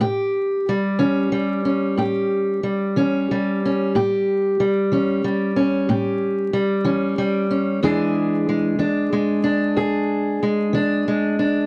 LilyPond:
\new Staff \with { instrumentName = "Steel-string acoustic guitar" } { \clef bass \time 12/8 \key a \major \tempo 4. = 62 << { g'4 g8 cis'8 g8 cis'8 g'4 g8 cis'8 g8 cis'8 | g'4 g8 cis'8 g8 cis'8 g'4 g8 cis'8 g8 cis'8 | <e gis d' gis'>4 gis8 d'8 gis8 d'8 gis'4 gis8 d'8 gis8 d'8 | } \\ { a,4 r8 e4 r8 a,4 r8 e4 r8 | a,4 r8 e4 r8 a,4 r8 e4 r8 | e,4 r8 e4 r8 e,4 r8 e4 r8 | } >> }